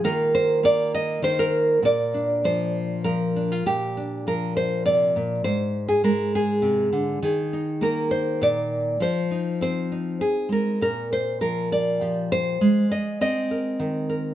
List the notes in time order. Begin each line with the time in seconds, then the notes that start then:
0.04 D#3 A#3 F4 A#4
0.35 C5
0.63 A#3 D5
0.95 D#5
1.22 D#3 C5
1.39 A#4
1.82 A#2 D5
2.14 D4
2.44 F3 C5
3.04 F3 A#4
3.36 D4
3.52 F4
3.66 A#2 G4
3.97 D4
4.27 F3 A#4
4.57 C5
4.86 C3 D5
5.16 A#2
5.44 G#2 C5
5.88 G#4
6.04 G#3 A#4
6.35 G#4
6.62 C3
6.93 D3
7.22 D#3 G#4
7.53 D#4
7.81 A#3 A#4
8.11 C5
8.41 A#2 D5
9.00 F3 C5
9.31 D#4
9.61 C4 C5
9.92 D#4
10.21 G#4
10.49 G#3 A#4
10.81 A#2 A#4
11.13 C5
11.41 F3 A#4
11.72 D5
12.01 F3 G4
12.32 C5
12.61 G#3
12.91 D#5
13.21 C4 D#5
13.51 A#4
13.80 D#3
14.10 A#4